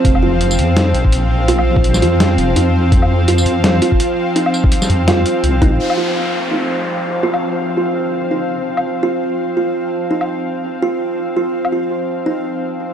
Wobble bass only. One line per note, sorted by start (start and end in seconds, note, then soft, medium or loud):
0.05 0.60 F1 loud
0.58 0.93 F2 loud
0.94 2.04 A#1 medium
2.02 2.37 F2 loud
2.38 2.55 F1 loud
2.56 3.45 F2 medium
3.46 3.81 F2 loud
4.90 5.25 F2 loud
5.44 5.73 C2 medium
5.72 5.79 G#1 medium